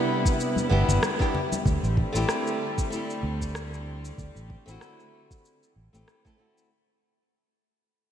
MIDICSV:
0, 0, Header, 1, 5, 480
1, 0, Start_track
1, 0, Tempo, 631579
1, 1257, Time_signature, 4, 2, 24, 8
1, 6166, End_track
2, 0, Start_track
2, 0, Title_t, "Nylon-string guitar"
2, 0, Program_c, 0, 24
2, 0, Note_on_c, 0, 59, 98
2, 0, Note_on_c, 0, 62, 86
2, 0, Note_on_c, 0, 64, 90
2, 0, Note_on_c, 0, 67, 99
2, 502, Note_off_c, 0, 59, 0
2, 509, Note_off_c, 0, 62, 0
2, 515, Note_off_c, 0, 64, 0
2, 521, Note_off_c, 0, 67, 0
2, 527, Note_on_c, 0, 59, 80
2, 533, Note_on_c, 0, 62, 78
2, 541, Note_on_c, 0, 64, 79
2, 548, Note_on_c, 0, 67, 94
2, 874, Note_off_c, 0, 59, 0
2, 877, Note_off_c, 0, 62, 0
2, 881, Note_off_c, 0, 64, 0
2, 885, Note_off_c, 0, 67, 0
2, 904, Note_on_c, 0, 59, 80
2, 910, Note_on_c, 0, 62, 76
2, 916, Note_on_c, 0, 64, 76
2, 922, Note_on_c, 0, 67, 90
2, 1051, Note_off_c, 0, 59, 0
2, 1055, Note_off_c, 0, 62, 0
2, 1058, Note_off_c, 0, 64, 0
2, 1061, Note_off_c, 0, 67, 0
2, 1615, Note_on_c, 0, 57, 90
2, 1628, Note_on_c, 0, 60, 77
2, 1638, Note_on_c, 0, 64, 82
2, 1651, Note_on_c, 0, 67, 102
2, 2183, Note_off_c, 0, 57, 0
2, 2190, Note_off_c, 0, 60, 0
2, 2195, Note_off_c, 0, 64, 0
2, 2201, Note_off_c, 0, 67, 0
2, 2206, Note_on_c, 0, 57, 76
2, 2217, Note_on_c, 0, 60, 61
2, 2229, Note_on_c, 0, 64, 68
2, 2242, Note_on_c, 0, 67, 78
2, 3513, Note_off_c, 0, 57, 0
2, 3519, Note_off_c, 0, 60, 0
2, 3525, Note_off_c, 0, 64, 0
2, 3532, Note_off_c, 0, 67, 0
2, 3539, Note_on_c, 0, 57, 92
2, 3552, Note_on_c, 0, 60, 81
2, 3564, Note_on_c, 0, 64, 83
2, 3576, Note_on_c, 0, 66, 95
2, 4345, Note_off_c, 0, 57, 0
2, 4352, Note_off_c, 0, 60, 0
2, 4358, Note_off_c, 0, 64, 0
2, 4364, Note_off_c, 0, 66, 0
2, 4506, Note_on_c, 0, 57, 67
2, 4511, Note_on_c, 0, 60, 59
2, 4518, Note_on_c, 0, 64, 62
2, 4524, Note_on_c, 0, 67, 79
2, 4716, Note_off_c, 0, 57, 0
2, 4719, Note_off_c, 0, 60, 0
2, 4722, Note_off_c, 0, 64, 0
2, 4725, Note_off_c, 0, 67, 0
2, 4747, Note_on_c, 0, 57, 75
2, 4752, Note_on_c, 0, 60, 67
2, 4760, Note_on_c, 0, 64, 71
2, 4765, Note_on_c, 0, 69, 78
2, 4829, Note_off_c, 0, 57, 0
2, 4831, Note_off_c, 0, 60, 0
2, 4836, Note_off_c, 0, 64, 0
2, 4838, Note_off_c, 0, 69, 0
2, 4847, Note_on_c, 0, 57, 72
2, 4854, Note_on_c, 0, 60, 66
2, 4860, Note_on_c, 0, 64, 65
2, 4866, Note_on_c, 0, 66, 79
2, 5079, Note_off_c, 0, 57, 0
2, 5082, Note_off_c, 0, 60, 0
2, 5086, Note_off_c, 0, 64, 0
2, 5089, Note_off_c, 0, 66, 0
2, 6166, End_track
3, 0, Start_track
3, 0, Title_t, "String section"
3, 0, Program_c, 1, 48
3, 0, Note_on_c, 1, 48, 76
3, 0, Note_on_c, 1, 55, 74
3, 0, Note_on_c, 1, 59, 75
3, 0, Note_on_c, 1, 64, 92
3, 1230, Note_off_c, 1, 48, 0
3, 1230, Note_off_c, 1, 55, 0
3, 1230, Note_off_c, 1, 59, 0
3, 1230, Note_off_c, 1, 64, 0
3, 1261, Note_on_c, 1, 55, 89
3, 1262, Note_on_c, 1, 50, 76
3, 1262, Note_on_c, 1, 57, 75
3, 1262, Note_on_c, 1, 60, 74
3, 5069, Note_off_c, 1, 50, 0
3, 5069, Note_off_c, 1, 55, 0
3, 5069, Note_off_c, 1, 57, 0
3, 5069, Note_off_c, 1, 60, 0
3, 6166, End_track
4, 0, Start_track
4, 0, Title_t, "Fingered electric bass"
4, 0, Program_c, 2, 33
4, 540, Note_on_c, 2, 31, 88
4, 626, Note_off_c, 2, 31, 0
4, 672, Note_on_c, 2, 31, 86
4, 740, Note_off_c, 2, 31, 0
4, 1258, Note_on_c, 2, 38, 88
4, 1345, Note_off_c, 2, 38, 0
4, 1392, Note_on_c, 2, 33, 82
4, 1538, Note_off_c, 2, 33, 0
4, 1632, Note_on_c, 2, 33, 81
4, 1700, Note_off_c, 2, 33, 0
4, 2455, Note_on_c, 2, 38, 94
4, 3117, Note_off_c, 2, 38, 0
4, 3178, Note_on_c, 2, 38, 86
4, 3265, Note_off_c, 2, 38, 0
4, 3312, Note_on_c, 2, 33, 75
4, 3457, Note_off_c, 2, 33, 0
4, 3552, Note_on_c, 2, 33, 79
4, 3620, Note_off_c, 2, 33, 0
4, 4379, Note_on_c, 2, 33, 70
4, 4465, Note_off_c, 2, 33, 0
4, 4513, Note_on_c, 2, 33, 79
4, 4581, Note_off_c, 2, 33, 0
4, 6166, End_track
5, 0, Start_track
5, 0, Title_t, "Drums"
5, 194, Note_on_c, 9, 36, 101
5, 200, Note_on_c, 9, 82, 68
5, 270, Note_off_c, 9, 36, 0
5, 276, Note_off_c, 9, 82, 0
5, 306, Note_on_c, 9, 82, 57
5, 382, Note_off_c, 9, 82, 0
5, 428, Note_on_c, 9, 63, 84
5, 440, Note_on_c, 9, 82, 32
5, 504, Note_off_c, 9, 63, 0
5, 516, Note_off_c, 9, 82, 0
5, 673, Note_on_c, 9, 64, 74
5, 680, Note_on_c, 9, 82, 68
5, 749, Note_off_c, 9, 64, 0
5, 756, Note_off_c, 9, 82, 0
5, 779, Note_on_c, 9, 63, 65
5, 781, Note_on_c, 9, 37, 103
5, 787, Note_on_c, 9, 82, 53
5, 855, Note_off_c, 9, 63, 0
5, 857, Note_off_c, 9, 37, 0
5, 863, Note_off_c, 9, 82, 0
5, 913, Note_on_c, 9, 36, 102
5, 922, Note_on_c, 9, 82, 32
5, 989, Note_off_c, 9, 36, 0
5, 998, Note_off_c, 9, 82, 0
5, 1023, Note_on_c, 9, 64, 75
5, 1099, Note_off_c, 9, 64, 0
5, 1158, Note_on_c, 9, 63, 85
5, 1160, Note_on_c, 9, 82, 68
5, 1234, Note_off_c, 9, 63, 0
5, 1236, Note_off_c, 9, 82, 0
5, 1259, Note_on_c, 9, 36, 119
5, 1266, Note_on_c, 9, 82, 49
5, 1335, Note_off_c, 9, 36, 0
5, 1342, Note_off_c, 9, 82, 0
5, 1399, Note_on_c, 9, 82, 29
5, 1475, Note_off_c, 9, 82, 0
5, 1499, Note_on_c, 9, 36, 99
5, 1575, Note_off_c, 9, 36, 0
5, 1638, Note_on_c, 9, 82, 65
5, 1714, Note_off_c, 9, 82, 0
5, 1738, Note_on_c, 9, 37, 90
5, 1744, Note_on_c, 9, 82, 51
5, 1814, Note_off_c, 9, 37, 0
5, 1820, Note_off_c, 9, 82, 0
5, 1877, Note_on_c, 9, 82, 29
5, 1953, Note_off_c, 9, 82, 0
5, 2113, Note_on_c, 9, 36, 98
5, 2116, Note_on_c, 9, 82, 66
5, 2189, Note_off_c, 9, 36, 0
5, 2192, Note_off_c, 9, 82, 0
5, 2222, Note_on_c, 9, 82, 50
5, 2298, Note_off_c, 9, 82, 0
5, 2358, Note_on_c, 9, 82, 33
5, 2434, Note_off_c, 9, 82, 0
5, 2593, Note_on_c, 9, 36, 53
5, 2599, Note_on_c, 9, 82, 68
5, 2669, Note_off_c, 9, 36, 0
5, 2675, Note_off_c, 9, 82, 0
5, 2698, Note_on_c, 9, 37, 97
5, 2704, Note_on_c, 9, 82, 52
5, 2774, Note_off_c, 9, 37, 0
5, 2780, Note_off_c, 9, 82, 0
5, 2839, Note_on_c, 9, 82, 32
5, 2915, Note_off_c, 9, 82, 0
5, 3078, Note_on_c, 9, 82, 64
5, 3154, Note_off_c, 9, 82, 0
5, 3179, Note_on_c, 9, 36, 113
5, 3183, Note_on_c, 9, 82, 52
5, 3255, Note_off_c, 9, 36, 0
5, 3259, Note_off_c, 9, 82, 0
5, 3317, Note_on_c, 9, 82, 29
5, 3393, Note_off_c, 9, 82, 0
5, 3419, Note_on_c, 9, 36, 95
5, 3495, Note_off_c, 9, 36, 0
5, 3558, Note_on_c, 9, 82, 61
5, 3634, Note_off_c, 9, 82, 0
5, 3657, Note_on_c, 9, 37, 79
5, 3663, Note_on_c, 9, 82, 53
5, 3733, Note_off_c, 9, 37, 0
5, 3739, Note_off_c, 9, 82, 0
5, 3798, Note_on_c, 9, 82, 26
5, 3874, Note_off_c, 9, 82, 0
5, 4034, Note_on_c, 9, 36, 98
5, 4038, Note_on_c, 9, 82, 63
5, 4110, Note_off_c, 9, 36, 0
5, 4114, Note_off_c, 9, 82, 0
5, 4145, Note_on_c, 9, 82, 53
5, 4221, Note_off_c, 9, 82, 0
5, 4280, Note_on_c, 9, 82, 31
5, 4356, Note_off_c, 9, 82, 0
5, 4520, Note_on_c, 9, 82, 63
5, 4596, Note_off_c, 9, 82, 0
5, 4619, Note_on_c, 9, 37, 91
5, 4625, Note_on_c, 9, 82, 50
5, 4695, Note_off_c, 9, 37, 0
5, 4701, Note_off_c, 9, 82, 0
5, 4753, Note_on_c, 9, 36, 96
5, 4759, Note_on_c, 9, 82, 32
5, 4829, Note_off_c, 9, 36, 0
5, 4835, Note_off_c, 9, 82, 0
5, 5000, Note_on_c, 9, 82, 62
5, 5076, Note_off_c, 9, 82, 0
5, 6166, End_track
0, 0, End_of_file